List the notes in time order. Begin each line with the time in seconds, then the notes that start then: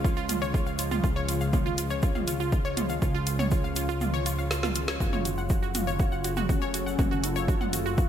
Already playing: C#2 C#3 F3 G#3 F4
0.04 F4, kick, shaker
0.17 F4, shaker
0.29 F4, closed hi-hat, mid tom, shaker
0.42 C#5, shaker
0.54 F4, kick, shaker
0.66 F5, shaker
0.79 F4, closed hi-hat, shaker
0.91 F4, mid tom, shaker
1.04 C#2 F4, kick, shaker
1.16 C#5, shaker
1.28 F4, closed hi-hat, shaker
1.41 F5, shaker
1.53 F4, kick, mid tom, shaker
1.66 F4, shaker
1.78 F4, closed hi-hat, shaker
1.90 C#5, shaker
2.02 F4, kick, shaker
2.15 F5, mid tom, shaker
2.28 F4, closed hi-hat, shaker
2.40 F4, shaker
2.52 F4, kick, shaker
2.65 C#5, shaker
2.77 F4, closed hi-hat, mid tom, shaker
2.89 F5, shaker
3.02 C#2 F4, kick, shaker
3.14 F4, shaker
3.27 F4, closed hi-hat, shaker
3.39 C#5, mid tom, shaker
3.51 F4, kick, shaker
3.64 F5, shaker
3.76 F4, closed hi-hat, shaker
3.89 F4, shaker
4.01 F4, mid tom, shaker
4.14 C#5, shaker
4.26 F4, closed hi-hat, shaker
4.38 F5, shaker
4.51 F4, snare, shaker
4.63 F4, snare, mid tom, shaker
4.75 F4, closed hi-hat, shaker
4.88 C#5, snare, shaker
5.00 F#1 F#3 A3 F4 F#4 A4, kick, shaker
5.13 C#5, mid tom, shaker
5.25 F#4, closed hi-hat, shaker
5.38 F#5, shaker
5.50 F#4, kick, shaker
5.63 F#4, shaker
5.75 F4 F#4, closed hi-hat, mid tom, shaker
5.87 C#5, shaker
5.99 F#4, kick, shaker
6.12 F#5, shaker
6.24 F#4, closed hi-hat, shaker
6.37 F#4, mid tom, shaker
6.49 C#4 F#4, kick, shaker
6.62 C#5, shaker
6.74 F#4, closed hi-hat, shaker
6.86 F#5, shaker
6.99 F#1 F#4, kick, mid tom, shaker
7.11 F#4, shaker
7.24 F4 F#4, closed hi-hat, shaker
7.36 C#5, shaker
7.48 F#4, kick, shaker
7.61 F#5, mid tom, shaker
7.73 F#4, closed hi-hat, shaker
7.86 F#4, shaker
7.98 F#4, kick, shaker